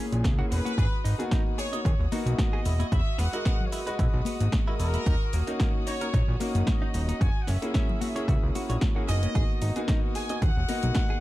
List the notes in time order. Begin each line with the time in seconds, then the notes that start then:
Already playing: A#3 C#4 E4 G#4 G#5
0.12 A#1, closed hi-hat, high conga, shaker
0.24 C#2, kick, snare, closed hi-hat, shaker
0.38 A#3 C#4 E4 F#4 G#4
0.51 E1 F#4 B4, open hi-hat, shaker
0.65 F#4, closed hi-hat, high conga, shaker
0.78 G#1 F#4 G#4 D#6, kick, closed hi-hat, shaker
1.04 G#1 D#4, open hi-hat, shaker
1.18 A#3 B3 D#4 F#4 G#4, closed hi-hat, shaker
1.31 D#4, kick, snare, closed hi-hat, shaker
1.58 G#4 C#5, open hi-hat, shaker
1.72 A#3 B3 D#4 F#4 D#5, closed hi-hat, shaker
1.85 D#2 G#4, kick, closed hi-hat, shaker
1.99 D#1
2.12 A#3 B3 D#4 F#4, open hi-hat, high conga, shaker
2.26 B1, closed hi-hat, high conga, low conga, shaker
2.33 E5
2.39 D#5, kick, snare, closed hi-hat, shaker
2.53 G#4
2.65 E1 E4, open hi-hat, shaker
2.79 E4, closed hi-hat, high conga, shaker
2.92 E1 E4 E5, kick, closed hi-hat, shaker
3.18 E1 B3 F#5, snare, open hi-hat, shaker
3.32 G#3 E4 F#4 A#4 D#5, closed hi-hat, shaker
3.45 B3, kick, snare, closed hi-hat, shaker
3.60 low conga
3.66 C#5
3.72 E4 B4, open hi-hat, shaker
3.86 G#3 F#4 B4 D#5, closed hi-hat, shaker
3.99 B1 E4, kick, closed hi-hat, shaker
4.14 B1
4.25 B3, open hi-hat, high conga, shaker
4.40 G#1, closed hi-hat, high conga, shaker
4.52 kick, snare, closed hi-hat, shaker
4.67 G#3 E4 F#4 A#4 D#5
4.79 E1 E4 A#4, open hi-hat, shaker
4.94 E4, closed hi-hat, high conga, shaker
5.06 D#1 D#4, kick, closed hi-hat, shaker
5.33 D#1 A#3, open hi-hat, shaker
5.47 A#3 C#4 D#4 F#4, closed hi-hat, shaker
5.60 A#3, kick, snare, closed hi-hat, shaker
5.87 D#4 C#5, open hi-hat, shaker
6.00 A#3 C#4 D#4 F#4 A#4, closed hi-hat, shaker
6.14 A#1 D#4, kick, closed hi-hat, shaker
6.28 A#1
6.40 A#3 C#4 D#4 F#4, open hi-hat, high conga, shaker
6.55 F#1, closed hi-hat, high conga, low conga, shaker
6.67 D#5, kick, snare, closed hi-hat, shaker
6.82 D#4
6.94 D#1 D#4, open hi-hat, shaker
7.09 D#4, closed hi-hat, high conga, shaker
7.21 F#1 F#4 G#5, kick, closed hi-hat, shaker
7.42 F#5
7.47 F#1 C#4 E5, snare, open hi-hat, shaker
7.62 A#3 C#4 E4 F#4 G#4, closed hi-hat, shaker
7.74 C#4, kick, snare, closed hi-hat, shaker
7.89 low conga
8.01 F#4 E5, open hi-hat, high conga, shaker
8.15 A#3 C#4 E4 G#4 C#5, closed hi-hat, shaker
8.28 C#2 F#4, kick, closed hi-hat, shaker
8.43 C#2
8.55 A#3 C#4 E4 F#4, open hi-hat, high conga, shaker
8.69 A#1 C#5, closed hi-hat, high conga, shaker
8.81 kick, snare, closed hi-hat, shaker
8.95 A#3 C#4 E4 F#4 G#4
9.07 F#1 A#3 B3 D#4 F#4 G#4 D#5, open hi-hat, shaker
9.23 C#4, closed hi-hat, high conga, shaker
9.35 G#1 F#4 G#4 D#6, kick, closed hi-hat, shaker
9.62 G#1 D#4, open hi-hat, shaker
9.76 A#3 B3 D#4 F#4 G#4, closed hi-hat, shaker
9.88 D#4, kick, snare, closed hi-hat, shaker
10.15 G#4 G#5, open hi-hat, shaker
10.29 A#3 B3 D#4 F#4 D#5, closed hi-hat, shaker
10.42 D#2 G#4 F#5, kick, closed hi-hat, shaker
10.57 D#1
10.68 A#3 B3 D#4 F#4, open hi-hat, high conga, shaker
10.83 B1, closed hi-hat, high conga, low conga, shaker
10.95 kick, snare, closed hi-hat, shaker
11.10 G#4